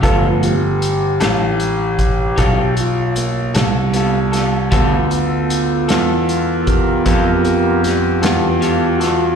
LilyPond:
<<
  \new Staff \with { instrumentName = "Tonewheel organ" } { \time 12/8 \key g \mixolydian \tempo 4. = 51 r8 <fis' g'>2. f'8 bes8 g4.~ | g8 r2 <g' a' bes'>8 <g' bes'>8 <g' bes'>8 <b g'>8 <b g'>8 <b g'>8 fis'8 | }
  \new Staff \with { instrumentName = "Tonewheel organ" } { \time 12/8 \key g \mixolydian <f a b>8 r1 r4. | <b f' a'>1. | }
  \new Staff \with { instrumentName = "Clean electric guitar" } { \time 12/8 \key g \mixolydian <g b f' a'>8 r4 <b f' a'>8 r4 <g b f' a'>8 r4 <b f' a'>8 <g b f' a'>8 <b f' a'>8 | <g b f' a'>8 r4 <b f' a'>8 r4 <g b f' a'>8 r4 <b f' a'>8 <g b f' a'>8 <b f' a'>8 | }
  \new Staff \with { instrumentName = "Upright piano" } { \time 12/8 \key g \mixolydian <b f' a'>1. | <b f' a'>1. | }
  \new Staff \with { instrumentName = "Grand piano" } { \clef bass \time 12/8 \key g \mixolydian g,,4. a,,4. b,,4. c,4. | d,4. e,4. f,4. e,4. | }
  \new DrumStaff \with { instrumentName = "Drums" } \drummode { \time 12/8 <hh bd>8 hh8 hh8 <hh sn>8 hh8 <hh bd>8 <hh bd>8 hh8 hh8 <hh sn>8 hh8 <hh sn>8 | <hh bd>8 hh8 hh8 <hh sn>8 hh8 <hh bd>8 <hh bd>8 hh8 <hh sn>8 <hh sn>8 hh8 <hh sn>8 | }
>>